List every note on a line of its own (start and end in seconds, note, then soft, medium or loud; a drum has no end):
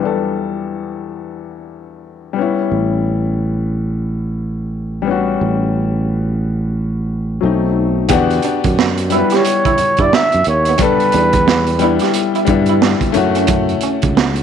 0.00 2.30 E2 soft
0.00 2.31 G3 medium
0.00 2.32 B3 soft
0.00 2.34 D4 soft
0.05 2.35 A4 medium
2.33 5.00 G3 medium
2.33 5.02 B3 medium
2.39 5.03 C#4 medium
2.39 5.05 E4 medium
2.72 5.36 A1 medium
5.02 7.36 G3 medium
5.02 7.37 B3 medium
5.08 7.39 C#4 medium
5.08 7.40 F#4 medium
5.41 7.39 A1 medium
7.41 8.07 B1 medium
7.41 8.09 F#3 medium
7.41 8.09 A3 medium
7.41 8.10 C4 medium
7.45 8.11 D#4 medium
8.09 8.38 E2 loud
8.09 9.04 B3 loud
8.09 9.04 D4 loud
8.09 9.03 G4 loud
8.09 kick loud
8.09 closed hi-hat medium
8.13 9.05 F#4 loud
8.30 closed hi-hat soft
8.43 8.59 D4 medium
8.43 closed hi-hat medium
8.64 9.22 F#2 medium
8.64 kick medium
8.64 closed hi-hat medium
8.79 muted clean electric guitar stroke soft
8.79 snare loud
8.98 closed hi-hat medium
9.10 10.35 G3 medium
9.10 10.36 B3 medium
9.10 10.37 D4 medium
9.10 9.27 E4 medium
9.10 closed hi-hat medium
9.14 10.38 E4 medium
9.14 9.37 B4 medium
9.30 9.41 G4 medium
9.30 snare soft
9.30 closed hi-hat medium
9.36 10.03 C#5 medium
9.45 closed hi-hat medium
9.65 9.75 E4 medium
9.65 kick medium
9.65 closed hi-hat soft
9.78 muted clean electric guitar stroke soft
9.78 muted fretless electric bass stroke soft
9.78 closed hi-hat medium
9.97 10.10 G2 medium
9.97 10.09 E4 medium
9.97 kick medium
9.97 closed hi-hat soft
10.02 10.16 D5 medium
10.13 10.28 D4 medium
10.13 10.47 E5 loud
10.13 snare loud
10.32 10.45 F#2 medium
10.32 closed hi-hat soft
10.44 10.75 D#2 medium
10.44 muted clean electric guitar stroke soft
10.44 closed hi-hat medium
10.48 10.84 C#5 medium
10.65 10.77 B3 medium
10.65 closed hi-hat medium
10.78 11.72 G3 medium
10.78 11.73 B3 medium
10.78 11.74 D4 medium
10.78 kick loud
10.78 closed hi-hat loud
10.82 11.75 A4 loud
10.82 12.16 B4 medium
11.00 closed hi-hat soft
11.12 11.98 E2 loud
11.12 11.29 D4 medium
11.12 closed hi-hat medium
11.33 kick medium
11.33 closed hi-hat medium
11.48 muted clean electric guitar stroke soft
11.48 snare loud
11.67 closed hi-hat medium
11.79 12.42 G3 medium
11.79 12.43 B3 medium
11.79 12.43 D4 medium
11.79 11.96 E4 medium
11.79 closed hi-hat medium
11.83 12.44 E4 medium
11.99 12.11 G4 medium
11.99 snare soft
11.99 closed hi-hat medium
12.14 closed hi-hat medium
12.35 12.45 E4 medium
12.35 closed hi-hat soft
12.45 12.94 G2 medium
12.45 13.09 G3 medium
12.45 13.10 B3 medium
12.45 13.10 D4 medium
12.45 muted clean electric guitar stroke soft
12.45 kick medium
12.45 closed hi-hat medium
12.49 13.11 E4 medium
12.66 12.78 E4 medium
12.66 closed hi-hat soft
12.82 12.97 D4 medium
12.82 snare loud
13.01 kick medium
13.01 closed hi-hat soft
13.12 14.39 A3 loud
13.12 14.40 C#4 medium
13.12 14.41 E4 medium
13.12 muted clean electric guitar stroke soft
13.12 closed hi-hat medium
13.16 13.73 F#2 loud
13.16 14.41 F#4 loud
13.35 13.46 C#4 medium
13.35 closed hi-hat medium
13.47 kick loud
13.47 closed hi-hat medium
13.69 closed hi-hat soft
13.81 13.98 C#4 medium
13.81 closed hi-hat medium
14.02 14.43 C#2 medium
14.02 kick medium
14.02 closed hi-hat medium
14.17 muted clean electric guitar stroke soft
14.17 snare loud
14.36 closed hi-hat medium